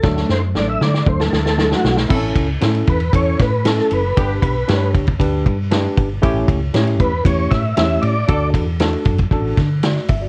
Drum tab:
CC |----------------|x---------------|----------------|----------------|
RD |----------------|--x-xxxxx-x-x-x-|x-x-x-xxx-x-x-x-|x-x-xxx-x-x-x-x-|
HH |----------------|----------------|----------------|----------------|
SD |ooo-o-oo-ooooooo|----o-----o-oo--|----o-------o---|----o-----o-o---|
BD |o-------o-------|o-o---o-o-o-----|o-o---ooo-o---o-|o-o---o-o-o-----|

CC |----------------|
RD |x-x-xxxxx-x-x-x-|
HH |--------------o-|
SD |----o-----o-oo--|
BD |o-o---ooo-o---o-|